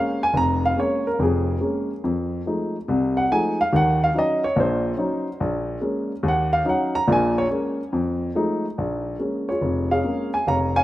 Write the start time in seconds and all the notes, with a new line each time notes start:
Already playing: G#3 A#3 C#4 F5
0.23 G#5
0.34 F1 A#5
0.65 F5
0.76 G#3 A#3 C#4 C#5
1.07 A#4
1.19 F1 F2 G#4
1.61 G#3 A#3 C#4
2.04 F2
2.46 F3 G#3 A3 D#4
2.88 C2 C3
3.17 F#5
3.31 F3 G#3 A3 D#4 G#5
3.61 F5
3.72 D#2 D#3 F#5
4.04 F5
4.14 F#3 C#4 D#4
4.19 D#5
4.44 C#5
4.56 A#1 A#2 C5
4.97 F#3 C#4 D#4
5.40 A#1
5.81 G#3 A#3 C#4
6.23 D#2
6.28 F#5
6.53 F5
6.65 F#3 C#4 D#4
6.69 F#5
6.95 A#5
7.07 A#1 A#2
7.12 G#5
7.38 C#5
7.50 G#3 A#3 C#4
7.93 F2
8.35 F3 G#3 A3 D#4
8.78 A#1
9.19 G#3 A#3 C#4
9.49 F4 G#4 C#5
9.61 F1
9.91 G#4 C#5 F5
10.04 G#3 A#3 C#4
10.34 G#5
10.47 F1 C#5 F5 A#5
10.76 C#5 F5 G#5